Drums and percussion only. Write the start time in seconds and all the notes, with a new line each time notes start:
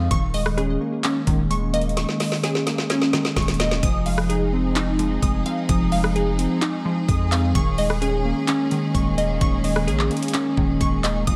0.11 kick, closed hi-hat
0.34 open hi-hat
0.46 cross-stick
0.58 cross-stick, closed hi-hat
1.04 clap, closed hi-hat
1.27 kick, closed hi-hat
1.51 closed hi-hat
1.74 closed hi-hat
1.81 closed hi-hat
1.89 closed hi-hat
1.97 snare, closed hi-hat
2.09 snare
2.20 snare, open hi-hat
2.32 snare
2.44 snare, closed hi-hat
2.55 snare
2.67 snare, closed hi-hat
2.78 snare
2.90 snare, closed hi-hat
3.02 snare
3.13 snare
3.25 snare
3.36 kick, snare, closed hi-hat
3.42 closed hi-hat
3.48 snare, closed hi-hat
3.54 closed hi-hat
3.60 snare, closed hi-hat
3.71 snare
3.83 kick, closed hi-hat
4.06 open hi-hat
4.18 cross-stick
4.30 closed hi-hat
4.76 clap, closed hi-hat
4.99 closed hi-hat
5.22 kick, closed hi-hat
5.46 closed hi-hat
5.69 kick, closed hi-hat
5.92 open hi-hat
6.04 cross-stick
6.16 closed hi-hat
6.39 closed hi-hat
6.62 clap, closed hi-hat
7.09 kick, closed hi-hat
7.32 clap, closed hi-hat
7.55 kick, closed hi-hat
7.78 open hi-hat
7.90 cross-stick
8.02 closed hi-hat
8.48 clap, closed hi-hat
8.71 closed hi-hat
8.95 kick, closed hi-hat
9.18 closed hi-hat
9.41 kick, closed hi-hat
9.64 open hi-hat
9.76 cross-stick
9.88 closed hi-hat
9.99 clap
10.11 closed hi-hat
10.17 closed hi-hat
10.23 closed hi-hat
10.28 closed hi-hat
10.34 clap, closed hi-hat
10.57 kick
10.81 kick, closed hi-hat
11.04 clap, closed hi-hat
11.27 kick, closed hi-hat